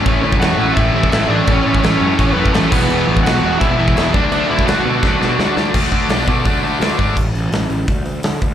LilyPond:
<<
  \new Staff \with { instrumentName = "Lead electric guitar" } { \time 4/4 \key d \lydian \tempo 4 = 169 <cis' cis''>8 r8 <fis' fis''>4 <e' e''>4 <e' e''>8 <d' d''>8 | <cis' cis''>8 <cis' cis''>8 <cis' cis''>4. <b b'>8 <a a'>8 <b b'>8~ | <b b'>8 r8 <fis' fis''>4 <e' e''>4 <e' e''>8 <d' d''>8 | <d' d''>8 <e' e''>8 <fis' fis''>2~ <fis' fis''>8 r8 |
r1 | r1 | }
  \new Staff \with { instrumentName = "Overdriven electric guitar" } { \time 4/4 \key d \lydian <a, e a cis' e'>2~ <a, e a cis' e'>8 <a, e a cis' e'>8 <a, e a cis' e'>4 | <a, e a cis' e'>2~ <a, e a cis' e'>8 <a, e a cis' e'>8 <a, e a cis' e'>8 <e gis b e'>8~ | <e gis b e'>2 <e gis b e'>8 <e gis b e'>4 <d fis a d'>8~ | <d fis a d'>2 <d fis a d'>8 <d fis a d'>4 r8 |
r1 | r1 | }
  \new Staff \with { instrumentName = "Overdriven electric guitar" } { \clef bass \time 4/4 \key d \lydian <a, e a>8 <a, e a>8 <a, e a>8 <a, e a>8 <a, e a>8 <a, e a>8 <a, e a>8 <a, e a>8 | <a, e a>8 <a, e a>8 <a, e a>8 <a, e a>8 <a, e a>8 <a, e a>8 <a, e a>8 <e, b, e>8 | <e, b, e>8 <e, b, e>8 <e, b, e>8 <e, b, e>8 <e, b, e>8 <e, b, e>8 <e, b, e>8 <d a d'>8 | <d a d'>8 <d a d'>8 <d a d'>8 <d a d'>8 <d a d'>8 <d a d'>8 <d a d'>8 <d a d'>8 |
<d a d'>8 <d a d'>8 <d a d'>8 <d a d'>8 <d a d'>8 <d a d'>8 <d a d'>8 <d a d'>8 | r1 | }
  \new Staff \with { instrumentName = "Overdriven electric guitar" } { \clef bass \time 4/4 \key d \lydian <a, e a>8 <a, e a>8 <a, e a>8 <a, e a>8 <a, e a>8 <a, e a>8 <a, e a>8 <a, e a>8 | <a, e a>8 <a, e a>8 <a, e a>8 <a, e a>8 <a, e a>8 <a, e a>8 <a, e a>8 <e, b, e>8 | <e, b, e>8 <e, b, e>8 <e, b, e>8 <e, b, e>8 <e, b, e>8 <e, b, e>8 <e, b, e>8 <d a d'>8 | <d a d'>8 <d a d'>8 <d a d'>8 <d a d'>8 <d a d'>8 <d a d'>8 <d a d'>8 <d a d'>8 |
<d a d'>8 <d a d'>8 <d a d'>8 <d a d'>8 <d a d'>8 <d a d'>8 <d a d'>8 <d a d'>8 | r1 | }
  \new Staff \with { instrumentName = "Picked electric bass" } { \clef bass \time 4/4 \key d \lydian a,,8 d,8 e,8 a,,8 a,,8 a,,8 a,,8 a,,8 | a,,8 a,,8 a,,8 fis,8 a,,8 fis,8 a,,8 e,,8 | e,,8 a,,8 b,,8 e,,8 e,,8 e,,8 e,,8 d,8 | d,8 d,8 d,8 b,8 d,8 b,8 d,8 d,8 |
d,4 b,,8 b,8 d,8 d,8 d,8 gis,,8 | a,,8 a,,8 a,,8 a,,8 d,8 d,8 d8 d,8 | }
  \new DrumStaff \with { instrumentName = "Drums" } \drummode { \time 4/4 <cymc bd>8. bd16 <cymc sn>4 <cymc bd>8. bd16 <cymc sn>4 | <cymc bd>8. bd16 <cymc sn>4 <cymc bd>8. bd16 <cymc sn>8 <cymc bd>8 | cymc8. bd16 <cymc sn>4 <cymc bd>8. bd16 <cymc sn>8 bd8 | cymc8. bd16 <cymc sn>4 <bd sn>8 sn8 sn8 sn8 |
<cymc bd>8 bd8 <hho sn>8 bd8 <hho bd>4 <hho sn>8 bd8 | <cymc bd>8 hho8 <hho sn>8 hho8 <hho bd>8 hho8 <hho sn>8 <hho bd>8 | }
>>